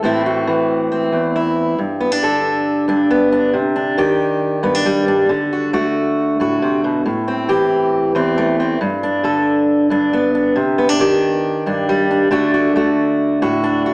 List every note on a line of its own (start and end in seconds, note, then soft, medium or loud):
0.03 1.12 A2 medium
0.03 0.46 E3 medium
0.03 1.76 A3 medium
0.03 0.90 C4 medium
0.03 0.26 E4 medium
0.26 1.35 F#4 medium
0.47 1.76 E3 medium
0.92 1.76 C4 medium
1.12 1.78 E2 medium
1.36 1.79 E4 medium
1.78 2.87 G2 medium
2.00 2.12 B3 medium
2.12 2.87 D4 medium
2.23 3.97 D3 medium
2.23 3.51 A4 medium
2.88 3.51 G2 medium
2.88 3.32 D4 medium
3.11 3.51 B3 medium
3.32 3.56 D4 medium
3.53 3.97 C3 medium
3.76 4.63 D4 medium
3.98 5.27 D#3 medium
3.98 5.27 G4 medium
4.63 5.26 G2 medium
4.63 4.75 B3 medium
4.75 5.07 D4 soft
4.86 5.29 G3 medium
5.08 5.27 D4 medium
5.29 7.05 D3 medium
5.53 5.73 F#4 medium
5.73 7.02 A3 medium
5.73 6.39 F#4 medium
6.40 6.61 A2 medium
6.40 7.03 F#4 medium
6.62 6.83 C3 medium
6.84 7.05 B2 medium
7.06 8.15 A2 medium
7.28 8.14 C4 medium
7.49 8.78 E3 medium
7.49 8.78 G4 medium
8.15 8.80 E2 medium
8.15 8.59 C4 medium
8.38 8.78 A3 medium
8.60 8.78 C4 medium
8.81 9.89 G2 medium
9.03 9.91 D4 medium
9.24 10.99 D3 medium
9.24 10.53 A4 medium
9.90 10.53 G2 medium
9.90 10.34 D4 medium
10.13 10.54 B3 medium
10.35 10.59 D4 medium
10.56 11.00 C3 medium
10.78 10.89 B3 medium
10.89 11.66 D4 medium
11.00 12.29 D#3 medium
11.00 12.29 G4 medium
11.66 12.29 G2 medium
11.66 12.09 D4 medium
11.89 12.31 G3 medium
12.11 12.29 D4 medium
12.31 13.94 D3 medium
12.31 12.75 A3 medium
12.31 13.62 D4 medium
12.31 12.53 F#4 medium
12.54 12.76 F#4 medium
12.76 13.94 A3 medium
12.76 13.41 F#4 medium
13.42 13.94 A2 medium
13.42 13.85 F#4 medium
13.64 13.94 D4 medium
13.86 13.94 F#4 medium